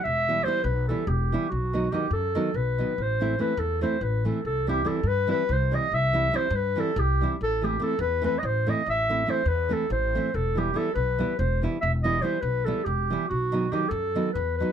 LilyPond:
<<
  \new Staff \with { instrumentName = "Clarinet" } { \time 7/8 \tempo 4 = 143 e''4 c''8 b'8 a'8 g'4 | fis'4 g'8 a'4 b'4 | c''4 b'8 a'8 c''8 b'8 a'8 | a'8 g'8 a'8 b'8 b'8 c''8 dis''8 |
e''4 c''8 b'8 a'8 g'4 | a'8 g'8 a'8 b'8 b'16. dis''32 c''8 dis''8 | e''4 c''8 b'8 a'8 c''4 | a'8 g'8 a'8 b'4 c''8 r8 |
e''8 dis''8 c''8 b'8 a'8 g'4 | fis'4 g'8 a'4 b'8 b'8 | }
  \new Staff \with { instrumentName = "Nylon-string guitar" } { \time 7/8 r8 <e g b e'>8 <e g b e'>8 r8 <e g b e'>8 r8 <e g b e'>8 | r8 <dis fis b dis'>8 <dis fis b dis'>8 r8 <dis fis b dis'>8 r8 <dis fis b dis'>8 | r8 <e a c' e'>8 <e a c' e'>8 r8 <e a c' e'>8 r8 <e a c' e'>8 | r8 <e g c' e'>8 <e g c' e'>8 r8 <e g c' e'>8 r8 <e g c' e'>8 |
r8 <e g c' e'>8 <e g c' e'>8 r8 <e g c' e'>8 r8 <e g c' e'>8 | r8 <e a c' e'>8 <e a c' e'>8 r8 <e a c' e'>8 r8 <e a c' e'>8 | r8 <e a c' e'>8 <e a c' e'>8 r8 <e a c' e'>8 r8 <e a c' e'>8 | r8 <e g b e'>8 <e g b e'>8 r8 <e g b e'>8 r8 <e g b e'>8 |
r8 <e g b e'>8 <e g b e'>8 r8 <e g b e'>8 r8 <e g b e'>8 | r8 <dis fis b dis'>8 <dis fis b dis'>8 r8 <dis fis b dis'>8 r8 <dis fis b dis'>8 | }
  \new Staff \with { instrumentName = "Upright bass" } { \clef bass \time 7/8 e,,4. b,,4 e,,4 | b,,4. fis,4 b,,4 | a,,4. e,4 a,,4 | c,4. g,4 c,4 |
c,4. g,4 c,4 | a,,4. e,4 a,,4 | a,,4. e,4 a,,4 | e,,4. b,,4 e,,4 |
e,,4. b,,4 e,,4 | b,,4. fis,4 e,4 | }
>>